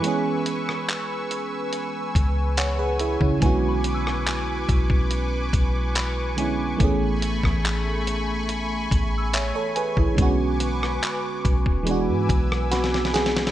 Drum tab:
HH |x---x---x---x---x---x---x---x---|x---x---x---x---x---x---x---x---|x---x---x---x---x---x---x---x---|x---x---x---x---x---x---x---x---|
CP |--------x---------------x-------|--------x---------------x-------|--------x---------------x-------|--------x-----------------------|
SD |------r-------------------------|------r-------------------------|------r-------------------------|------r---------------r-oooooooo|
BD |--------------------o---------o-|o-----------o-o-----o-----------|o-----o-------------o---------o-|o-----------o-o-----o-----------|